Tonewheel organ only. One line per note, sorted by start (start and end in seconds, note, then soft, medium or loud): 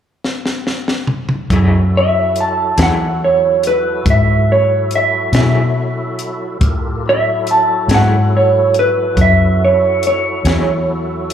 1.49 6.58 F#3 medium
1.49 6.58 E4 medium
1.49 6.57 F#4 medium
1.49 6.58 A4 medium
6.62 7.05 F4 medium
6.62 7.05 G4 medium
6.62 7.05 A4 medium
6.62 7.05 A#4 medium
7.06 11.33 F#3 medium
7.06 11.33 E4 medium
7.06 11.33 F#4 medium
7.06 11.33 A4 medium